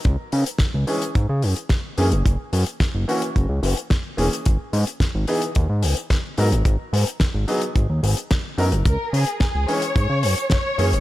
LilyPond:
<<
  \new Staff \with { instrumentName = "Violin section" } { \time 4/4 \key cis \dorian \tempo 4 = 109 r1 | r1 | r1 | r1 |
ais'8 gis'8 gis'8 cis''4. cis''4 | }
  \new Staff \with { instrumentName = "Grand piano" } { \time 4/4 \key cis \dorian r4. <e gis cis' gis'>8 r4. <e ais cis' gis'>8 | r4. <e ais cis' fis'>8 r4. <e ais cis' gis'>8 | r4. <e b dis' gis'>8 r4. <fis b dis' ais'>8 | r4. <fis b dis' gis'>8 r4. <fis b dis' ais'>8 |
r4. <e gis cis' gis'>8 r4. <e ais cis' gis'>8 | }
  \new Staff \with { instrumentName = "Analog synth bass" } { \clef bass \time 4/4 \key cis \dorian cis,16 r16 cis16 r8 cis,16 r8 gis,16 cis16 fis,16 r8. fis,16 fis,,16 | fis,,16 r16 fis,16 r8 fis,,16 r8 fis,,16 cis,16 fis,,16 r8. e,,16 r16 | gis,,16 r16 gis,16 r8 gis,,16 r8 dis,16 gis,16 cis,16 r8. gis,16 gis,,16 | gis,,16 r16 gis,16 r8 gis,,16 r8 gis,,16 dis,16 gis,,16 r8. fis,16 fis,,16 |
cis,16 r16 cis16 r8 cis,16 r8 gis,16 cis16 fis,16 r8. fis,16 fis,,16 | }
  \new DrumStaff \with { instrumentName = "Drums" } \drummode { \time 4/4 <hh bd>8 hho16 hh16 <hh bd sn>8 hho16 hh16 <hh bd>8 hho16 hh16 <hh bd sn>8 hho16 hh16 | <hh bd>8 hho16 hh16 <hh bd sn>8 hho16 hh16 <hh bd>8 hho16 hh16 <hh bd sn>8 hho16 hh16 | <hh bd>8 hho16 hh16 <hh bd sn>8 hho16 hh16 <hh bd>8 hho16 hh16 <hh bd sn>8 hho16 hh16 | <hh bd>8 hho16 hh16 <hh bd sn>8 hho16 hh16 <hh bd>8 hho16 hh16 <hh bd sn>8 hho16 hh16 |
<hh bd>8 hho16 hh16 <hh bd sn>8 hho16 hh16 <hh bd>8 hho16 hh16 <hh bd sn>8 hho16 hh16 | }
>>